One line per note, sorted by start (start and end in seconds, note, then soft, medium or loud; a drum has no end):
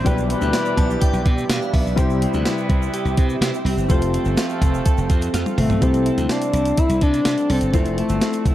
0.00 0.10 C4 medium
0.00 0.53 E4 medium
0.00 3.86 G4 medium
0.00 1.94 E5 medium
0.05 0.33 B1 loud
0.05 0.74 B2 medium
0.05 1.97 E3 medium
0.05 1.71 E3 medium
0.05 1.93 G3 medium
0.05 1.71 G3 medium
0.05 1.94 D4 medium
0.05 1.71 D4 medium
0.05 1.94 E4 medium
0.05 1.00 G4 medium
0.05 1.71 G4 loud
0.05 1.95 B4 medium
0.05 0.18 B4 loud
0.05 1.96 D5 medium
0.05 1.96 B5 medium
0.05 kick loud
0.05 closed hi-hat medium
0.05 shaker medium
0.18 shaker soft
0.29 0.76 B3 medium
0.29 1.22 B4 medium
0.29 closed hi-hat medium
0.41 0.51 D2 medium
0.41 shaker medium
0.53 1.48 D4 medium
0.53 snare medium
0.53 closed hi-hat medium
0.53 tambourine medium
0.53 shaker medium
0.65 shaker soft
0.77 0.96 B1 medium
0.77 1.24 B3 medium
0.77 1.02 A5 loud
0.77 kick loud
0.77 closed hi-hat medium
0.91 shaker medium
1.01 1.97 G4 medium
1.01 1.51 G5 loud
1.01 kick medium
1.01 closed hi-hat medium
1.01 shaker medium
1.13 1.22 B1 loud
1.13 shaker soft
1.25 1.44 B2 loud
1.25 1.72 B3 medium
1.25 kick medium
1.25 closed hi-hat medium
1.38 shaker soft
1.49 1.59 B2 loud
1.49 2.03 D4 medium
1.49 1.75 F5 loud
1.49 snare loud
1.49 closed hi-hat medium
1.49 tambourine medium
1.49 shaker medium
1.62 shaker soft
1.73 1.83 B1 medium
1.73 2.02 B3 medium
1.73 1.97 E5 medium
1.73 kick medium
1.73 open hi-hat medium
1.87 1.95 B1 medium
1.87 shaker soft
1.96 2.25 C2 loud
1.96 2.66 C3 medium
1.96 3.85 G3 medium
1.96 3.89 G3 medium
1.96 3.63 G3 medium
1.96 3.63 B3 medium
1.96 3.85 C4 medium
1.96 5.78 C4 medium
1.96 3.86 E4 medium
1.96 3.63 E4 medium
1.96 2.92 G4 medium
1.96 3.63 B4 loud
1.96 3.86 C5 medium
1.96 3.88 E5 medium
1.96 2.90 E5 medium
1.96 5.78 G5 medium
1.96 kick loud
1.96 closed hi-hat medium
1.96 shaker medium
2.10 shaker soft
2.21 2.69 C4 medium
2.21 closed hi-hat medium
2.34 2.43 D2 medium
2.34 shaker medium
2.45 3.40 E4 medium
2.45 snare loud
2.45 closed hi-hat medium
2.45 tambourine medium
2.45 shaker medium
2.58 shaker soft
2.69 2.88 C2 medium
2.69 3.17 C4 medium
2.69 kick loud
2.69 closed hi-hat medium
2.82 shaker soft
2.94 3.90 G4 medium
2.94 closed hi-hat medium
2.94 shaker medium
3.05 3.14 C2 medium
3.05 shaker soft
3.17 3.36 C3 medium
3.17 3.65 C4 medium
3.17 kick medium
3.17 closed hi-hat medium
3.29 shaker soft
3.41 3.50 C3 loud
3.41 3.95 E4 medium
3.41 snare loud
3.41 closed hi-hat medium
3.41 tambourine medium
3.41 shaker medium
3.54 shaker soft
3.65 3.74 C2 medium
3.65 4.13 C4 medium
3.65 open hi-hat medium
3.77 3.86 G1 medium
3.77 shaker soft
3.88 4.17 F1 loud
3.88 5.54 F3 medium
3.88 5.82 F3 medium
3.88 5.77 A3 medium
3.88 5.54 A3 medium
3.88 5.78 C4 medium
3.88 5.54 C4 medium
3.88 5.78 F4 medium
3.88 5.54 A4 medium
3.88 4.85 A4 medium
3.88 5.80 A4 medium
3.88 5.79 C5 medium
3.88 5.80 F5 medium
3.88 kick loud
3.88 closed hi-hat medium
3.88 shaker medium
4.02 closed hi-hat medium
4.02 shaker soft
4.14 4.61 C4 medium
4.14 closed hi-hat medium
4.14 shaker medium
4.25 4.35 G1 medium
4.25 shaker medium
4.37 5.33 F4 medium
4.37 snare medium
4.37 closed hi-hat medium
4.37 tambourine medium
4.37 shaker medium
4.49 shaker soft
4.62 4.80 F1 medium
4.62 5.09 C4 medium
4.62 kick loud
4.62 closed hi-hat medium
4.62 shaker medium
4.74 shaker soft
4.86 5.82 A4 medium
4.86 kick medium
4.86 closed hi-hat medium
4.86 shaker medium
4.98 5.07 F1 medium
4.98 shaker soft
5.10 5.28 F2 loud
5.10 5.57 C4 medium
5.10 kick medium
5.10 closed hi-hat medium
5.10 shaker soft
5.22 closed hi-hat medium
5.22 shaker soft
5.34 5.43 F2 medium
5.34 5.87 F4 medium
5.34 snare medium
5.34 closed hi-hat medium
5.34 shaker medium
5.46 high tom medium
5.46 shaker soft
5.58 5.67 G1 medium
5.58 5.83 A3 medium
5.58 6.30 C4 medium
5.58 mid tom medium
5.58 open hi-hat medium
5.70 5.79 B1 medium
5.70 floor tom medium
5.70 shaker soft
5.80 6.09 C2 medium
5.80 6.50 C3 medium
5.80 7.74 G3 medium
5.80 7.69 A3 medium
5.80 6.32 C4 medium
5.80 7.70 E4 medium
5.80 7.70 G4 medium
5.80 7.02 A4 medium
5.80 7.71 C5 medium
5.80 kick loud
5.80 closed hi-hat medium
5.80 shaker medium
5.94 closed hi-hat medium
5.94 shaker soft
6.06 6.53 E4 medium
6.06 closed hi-hat medium
6.17 6.27 D2 medium
6.17 closed hi-hat medium
6.17 shaker medium
6.29 6.78 C4 medium
6.29 6.80 D4 loud
6.29 snare medium
6.29 closed hi-hat medium
6.29 shaker medium
6.42 closed hi-hat medium
6.42 shaker soft
6.53 6.71 C2 medium
6.53 7.79 E4 medium
6.53 closed hi-hat medium
6.53 shaker medium
6.65 closed hi-hat medium
6.65 shaker soft
6.77 7.25 C4 medium
6.77 7.02 E4 loud
6.77 kick medium
6.77 closed hi-hat medium
6.77 shaker medium
6.89 6.99 C2 medium
6.89 closed hi-hat soft
6.89 shaker soft
7.01 7.20 C3 medium
7.01 7.53 D4 loud
7.01 7.49 A4 medium
7.01 kick medium
7.01 closed hi-hat medium
7.01 shaker soft
7.14 closed hi-hat soft
7.14 shaker soft
7.25 7.35 C3 medium
7.25 7.72 C4 medium
7.25 snare loud
7.25 closed hi-hat medium
7.25 shaker medium
7.38 closed hi-hat soft
7.38 shaker soft
7.50 7.59 C2 medium
7.50 7.76 C4 loud
7.50 7.73 A4 medium
7.50 open hi-hat medium
7.61 7.71 G1 medium
7.61 closed hi-hat medium
7.61 shaker soft
7.72 8.01 F1 loud
7.72 8.55 F3 medium
7.72 8.55 A3 medium
7.72 7.98 A3 medium
7.72 8.21 C4 medium
7.72 8.55 E4 medium
7.72 8.55 A4 medium
7.72 8.55 C5 medium
7.72 kick loud
7.72 closed hi-hat medium
7.72 shaker medium
7.85 closed hi-hat medium
7.85 shaker soft
7.98 8.55 A3 medium
7.98 8.45 E4 medium
7.98 closed hi-hat medium
8.09 8.19 G1 medium
8.09 closed hi-hat soft
8.09 shaker medium
8.21 8.55 C4 medium
8.21 snare medium
8.21 closed hi-hat medium
8.21 shaker medium
8.33 closed hi-hat medium
8.33 shaker soft
8.45 8.55 F1 medium
8.45 8.55 E4 medium
8.45 kick medium
8.45 closed hi-hat medium
8.45 shaker medium